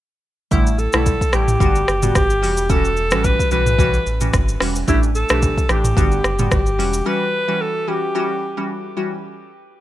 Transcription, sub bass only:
0.52 0.88 A1 loud
0.94 1.17 B1 medium
1.33 1.57 A1 loud
1.60 1.84 G1 loud
1.88 2.12 F#1 medium
2.15 2.44 G1 loud
2.42 3.13 E1 loud
3.12 3.36 A1 medium
3.52 3.99 B1 loud
4.06 4.30 A1 medium
4.34 4.57 G1 loud
4.61 4.84 E1 medium
4.88 5.25 A1 loud
5.30 5.54 B1 medium
5.70 5.93 A1 loud
5.97 6.21 G1 loud
6.24 6.48 F#1 medium
6.52 6.80 G1 loud
6.79 7.03 E1 loud

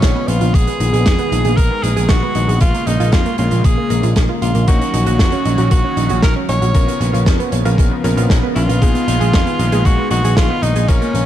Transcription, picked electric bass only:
0.02 0.14 A#1 loud
0.28 0.40 A#1 loud
0.41 0.53 A#1 medium
0.80 0.92 A#1 medium
0.93 1.04 A#1 medium
1.06 1.17 F2 loud
1.32 1.43 A#1 loud
1.45 1.56 A#1 medium
1.84 1.95 A#1 medium
1.97 2.08 A#1 medium
2.35 2.47 A#1 medium
2.48 2.60 A#1 medium
2.87 2.99 A#1 medium
3.00 3.11 A#1 medium
3.13 3.24 F2 loud
3.39 3.50 A#1 loud
3.52 3.63 A#1 medium
3.64 3.76 A#1 loud
3.90 4.02 A#1 loud
4.03 4.15 A#1 medium
4.16 4.28 A#1 loud
4.42 4.54 A#1 medium
4.55 4.66 A#1 medium
4.68 4.79 A#1 loud
4.94 5.05 A#1 medium
5.07 5.18 A#1 medium
5.20 5.31 F2 loud
5.46 5.57 A#1 loud
5.58 5.70 A#1 medium
5.71 5.83 A#1 loud
5.97 6.09 A#1 medium
6.10 6.22 A#1 medium
6.49 6.60 A#1 medium
6.62 6.73 A#1 medium
7.01 7.12 A#1 loud
7.14 7.25 A#1 medium
7.26 7.38 F2 loud
7.53 7.64 A#1 loud
7.65 7.77 A#1 medium
7.78 7.90 A#1 loud
8.04 8.16 A#1 medium
8.17 8.29 A#1 medium
8.56 8.68 A#1 medium
8.69 8.80 A#1 medium
8.82 8.93 A#1 loud
9.08 9.19 A#1 loud
9.20 9.32 A#1 medium
9.33 9.45 F2 loud
9.59 9.71 A#1 loud
9.72 9.84 A#1 medium
9.85 9.97 A#1 loud
10.11 10.22 A#1 medium
10.24 10.35 A#1 medium
10.37 10.48 A#1 loud
10.63 10.74 A#1 medium
10.75 10.87 A#1 medium
11.14 11.26 A#1 loud

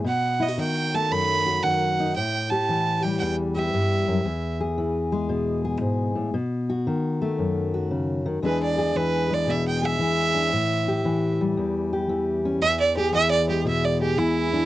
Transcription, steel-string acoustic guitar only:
0.04 0.57 B2 medium
0.40 0.48 E4 medium
0.48 1.45 F#4 medium
0.58 1.62 D#3 medium
0.94 2.13 A3 medium
1.11 2.13 F#2 medium
1.46 2.13 F#4 medium
1.64 2.13 D#3 medium
2.00 2.14 D#4 medium
2.17 3.20 A2 medium
2.51 3.55 G4 medium
2.69 4.23 E3 medium
3.04 4.25 G3 medium
3.21 3.73 E2 medium
3.57 4.23 G4 medium
3.74 4.08 G2 medium
4.08 4.25 F#2 medium
4.25 5.81 E2 medium
4.61 5.63 G#4 medium
4.78 6.32 E3 medium
5.12 6.32 G#3 medium
5.29 6.15 B2 medium
5.65 6.32 G#4 medium
5.81 6.16 G#2 soft
6.15 6.33 A2 medium
6.34 6.86 B2 medium
6.69 7.73 F#4 medium
6.87 8.24 D#3 medium
7.22 8.41 A3 medium
7.39 8.41 F#2 medium
7.74 8.41 F#4 medium
7.91 8.26 C#3 soft
8.26 8.42 D#3 medium
8.42 10.52 E2 medium
8.42 8.95 E3 medium
8.42 9.29 G#3 medium
8.42 10.33 D4 medium
8.42 8.77 G#4 medium
8.78 9.82 G#4 medium
8.96 9.99 E3 medium
9.30 10.50 G#3 medium
9.47 10.00 B2 medium
9.83 10.50 G#4 medium
10.00 11.05 E3 medium
10.35 10.50 D4 medium
10.53 11.57 A2 medium
10.88 11.92 G4 medium
11.05 12.09 E3 medium
11.41 12.62 G3 medium
11.57 12.60 E2 medium
11.93 12.60 G4 medium
12.09 13.13 E3 medium
12.45 12.60 C#4 medium
12.62 14.65 E2 medium
12.97 14.01 G#4 medium
13.14 14.17 E3 medium
13.49 14.65 G#3 medium
13.65 14.17 B2 medium
14.02 14.65 G#4 medium
14.17 14.65 E3 medium
14.53 14.65 D4 medium

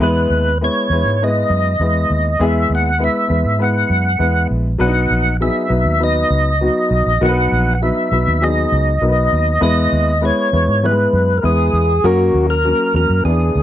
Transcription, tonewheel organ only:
0.03 0.58 B4 medium
0.64 1.24 C#5 medium
1.24 2.46 D#5 medium
2.43 2.73 E5 loud
2.75 3.04 F#5 medium
3.04 3.64 E5 medium
3.62 4.47 F#5 medium
4.81 5.37 F#5 loud
5.42 6.03 E5 medium
6.04 7.26 D#5 medium
7.23 7.74 F#5 loud
7.75 7.82 F#5 medium
7.83 8.44 E5 medium
8.43 9.62 D#5 medium
9.63 10.25 D#5 loud
10.25 10.86 C#5 medium
10.86 11.39 B4 medium
11.38 11.44 A#4 medium
11.45 12.07 G#4 medium
12.05 12.47 F#4 medium
12.50 12.95 A#4 loud
12.96 13.24 A#4 medium
13.25 13.63 G#4 medium

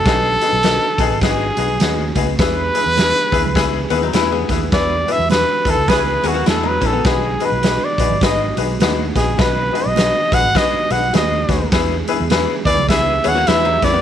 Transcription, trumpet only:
0.00 1.21 A4 loud
1.22 2.13 G#4 medium
2.40 3.87 B4 loud
4.73 5.13 D5 loud
5.12 5.30 E5 loud
5.30 5.71 B4 loud
5.70 5.90 A4 loud
5.89 6.29 B4 medium
6.27 6.47 F#4 medium
6.48 6.69 A4 medium
6.67 6.87 B4 medium
6.86 7.07 A4 medium
7.06 7.47 G#4 medium
7.45 7.86 B4 medium
7.84 8.23 D5 medium
8.24 8.56 D#5 medium
9.16 9.42 G#4 medium
9.40 9.88 B4 medium
9.87 10.35 D#5 loud
10.34 10.58 F#5 loud
10.57 10.93 D#5 loud
10.92 11.14 F#5 loud
11.16 11.69 D#5 medium
12.66 12.87 D5 loud
12.89 13.29 E5 loud
13.28 13.49 F#5 loud
13.47 13.85 E5 loud
13.84 14.02 D5 loud

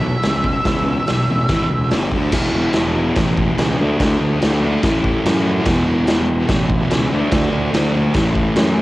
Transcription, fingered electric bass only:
0.00 0.13 B1 medium
0.24 0.56 C#2 medium
0.65 0.98 C#2 medium
1.09 1.25 B1 medium
1.29 1.45 A1 medium
1.49 1.65 G#1 medium
1.70 1.93 C#2 medium
1.91 2.13 G1 medium
2.12 2.28 D2 medium
2.32 2.49 E1 loud
2.54 2.71 E1 loud
2.75 3.09 E1 loud
3.17 3.50 A1 medium
3.58 3.75 C#2 loud
3.79 3.96 D2 medium
4.00 4.17 D2 medium
4.21 4.38 D2 loud
4.43 4.76 D2 loud
4.83 5.17 A1 medium
5.25 5.59 F#2 loud
5.66 5.83 E1 medium
5.87 6.04 E1 loud
6.08 6.42 E1 loud
6.49 6.83 A1 medium
6.92 7.09 C#2 loud
7.12 7.29 D2 medium
7.32 7.49 D2 medium
7.52 7.70 D2 loud
7.73 8.08 D2 medium
8.15 8.49 A1 medium
8.56 8.82 F#2 loud

